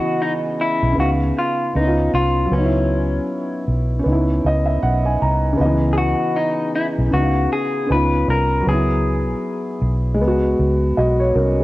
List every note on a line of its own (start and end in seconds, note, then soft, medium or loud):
0.00 0.91 C#3 medium
0.00 0.97 E3 medium
0.00 0.93 B3 medium
0.00 0.22 F#4 medium
0.00 0.95 D#5 medium
0.22 0.32 D#4 medium
0.61 0.95 E4 loud
0.83 0.95 B1 medium
0.93 1.71 C#3 medium
0.93 1.73 B3 medium
0.97 1.31 C#2 medium
0.97 1.74 D#4 medium
0.97 1.10 F#4 medium
0.97 1.75 F5 medium
1.39 1.73 F4 medium
1.74 2.08 C#2 loud
1.74 2.50 B3 medium
1.74 2.51 C#4 medium
1.74 2.11 D#4 medium
1.78 2.53 D#4 medium
1.78 1.85 E4 medium
1.87 2.57 F4 medium
2.13 2.46 C2 loud
2.13 2.53 F4 loud
2.46 3.99 F#3 medium
2.51 3.18 C#2 loud
2.51 4.02 B3 medium
2.51 3.63 C#4 medium
2.58 2.62 D#4 medium
2.65 4.08 E4 medium
3.68 4.00 B1 medium
3.99 5.52 C#4 medium
4.04 4.39 C#2 medium
4.04 5.55 B3 medium
4.08 5.57 D#4 medium
4.12 5.59 E4 medium
4.44 4.77 C#2 medium
4.44 4.67 D#5 medium
4.66 4.80 E5 medium
4.82 5.16 B1 medium
4.82 5.04 F#5 medium
5.05 5.19 G#5 medium
5.22 5.54 C2 medium
5.22 5.56 A#5 medium
5.53 7.06 C#3 medium
5.57 6.13 C#2 medium
5.57 7.08 B3 medium
5.57 7.10 D#5 medium
5.66 7.13 E3 medium
5.93 5.97 G#4 medium
5.98 6.37 F#4 medium
6.36 6.71 D#4 medium
6.76 6.86 E4 medium
6.99 7.11 B1 medium
7.11 7.46 C#2 medium
7.11 7.88 C#3 medium
7.11 7.87 B3 soft
7.11 7.52 F#4 medium
7.15 7.89 D#4 medium
7.15 7.22 E4 medium
7.23 7.95 F5 medium
7.53 7.91 G#4 medium
7.87 8.23 C#2 medium
7.87 8.65 B3 medium
7.87 8.65 C#4 medium
7.91 8.67 D#4 medium
7.91 8.68 F4 medium
7.91 8.30 B4 medium
8.28 8.61 C2 medium
8.28 8.68 A#4 loud
8.60 10.14 F#3 medium
8.67 9.33 C#2 loud
8.67 10.17 B3 medium
8.67 9.78 G#4 medium
8.73 10.20 E4 medium
9.82 10.21 B1 medium
10.14 11.64 G#3 medium
10.21 10.54 C#2 loud
10.21 10.96 B3 medium
10.27 10.97 F#4 medium
10.59 10.92 C#2 medium
10.97 11.31 B1 medium
10.97 11.20 F#4 medium
10.97 11.20 D#5 medium
11.20 11.34 C#5 medium
11.35 11.64 C2 medium
11.35 11.58 C#4 medium
11.35 11.58 A#4 medium
11.60 11.64 B3 medium
11.60 11.64 G#4 medium